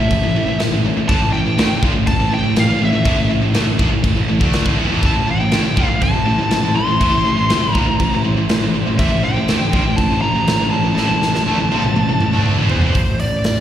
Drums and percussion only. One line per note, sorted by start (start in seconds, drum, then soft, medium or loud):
0.11 kick medium
0.11 crash medium
0.60 snare loud
0.60 crash medium
1.09 kick loud
1.09 crash medium
1.58 snare loud
1.58 crash medium
1.83 kick loud
2.07 kick medium
2.07 crash medium
2.56 snare loud
2.56 crash medium
3.05 kick loud
3.05 crash medium
3.54 snare loud
3.54 crash medium
3.79 kick loud
4.04 kick medium
4.04 crash medium
4.41 kick loud
4.53 snare loud
4.53 crash medium
4.66 kick loud
5.03 kick loud
5.03 crash medium
5.51 snare loud
5.51 crash medium
5.77 kick loud
6.02 kick medium
6.02 crash medium
6.51 snare loud
6.51 crash medium
7.01 kick medium
7.01 crash medium
7.50 snare loud
7.50 crash medium
7.75 kick loud
8.00 kick medium
8.00 crash medium
8.49 snare loud
8.49 crash medium
8.99 kick loud
8.99 crash medium
9.48 snare loud
9.48 crash medium
9.73 kick loud
9.98 kick medium
9.98 crash medium
10.48 snare loud
10.48 crash medium
10.97 snare medium
11.22 snare medium
11.35 snare medium
11.47 high tom medium
11.72 high tom medium
11.84 mid tom medium
11.96 mid tom medium
12.20 mid tom medium
12.33 mid tom medium
12.46 mid tom medium
12.70 floor tom loud
12.82 floor tom medium
12.95 kick loud
12.95 open hi-hat medium
13.20 open hi-hat medium
13.44 snare loud
13.44 open hi-hat medium